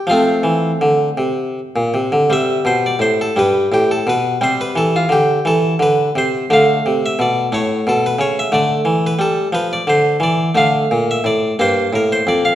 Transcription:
<<
  \new Staff \with { instrumentName = "Harpsichord" } { \time 6/8 \key f \major \tempo 4. = 58 <a c' f'>4. r4. | \key c \major e''8 c''16 d''16 c''16 a'16 b'8 g'16 a'16 b'8 | c''16 b'16 a'16 f'16 g'8 a'8 b'8 c''8 | f''8. e''16 d''8 cis''8 a'16 b'16 cis''16 e''16 |
d''8. b'16 a'8 b'16 d''16 c''8 d''8 | \key d \minor f''8. e''16 d''8 c''8 bes'16 c''16 d''16 f''16 | }
  \new Staff \with { instrumentName = "Harpsichord" } { \clef bass \time 6/8 \key f \major << { r2. | \key c \major g4. g4. | g2. | a4. a4. |
a2. | \key d \minor a4. bes4. | } \\ { f8 e8 d8 c8. bes,16 c16 d16 | c8 b,8 a,8 g,8 a,8 b,8 | c8 e8 d8 e8 d8 c8 | d8 c8 b,8 a,8 b,8 cis8 |
d8 e8 g8 f8 d8 e8 | d8 bes,8 a,8 g,8 a,8 f,8 | } >> }
>>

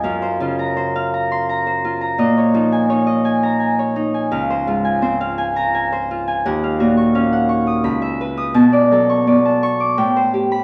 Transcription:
<<
  \new Staff \with { instrumentName = "Harp" } { \time 3/4 \key des \major \tempo 4 = 84 << { f'''4.~ f'''16 c'''8 r8. | r4. r16 bes''8 r8. | r4. r16 bes''8 r8. | r4. r16 ees'''8 r8 ees'''16 |
r4. r16 d'''8 r8 b''16 | } \\ { <f' f''>16 c''16 f'16 bes''16 c''16 f''16 bes''8 bes''16 c''16 f'16 bes''16 | ees''16 des''16 ees'16 aes''16 des''16 ees''16 aes''8 aes''16 des''16 ees'16 aes''16 | f''16 c''16 f'16 aes''16 c''16 f''16 aes''8 aes''16 c''16 f'16 aes''16 | ges''16 f''16 ges'16 des'''16 f''16 ges''16 des'''8 ces'''16 fes''16 ces''8 |
a''16 d''16 a'16 des'''16 d''16 a''16 des'''8 g''16 c''16 g'8 | } >> }
  \new Staff \with { instrumentName = "Harp" } { \clef bass \time 3/4 \key des \major ges,8 des2~ des8 | bes,8 f8 ees'2 | des,8 aes,8 c'2 | ees,8 bes,8 des'4 des,4 |
ces8 ges8 ces'4 a,4 | }
>>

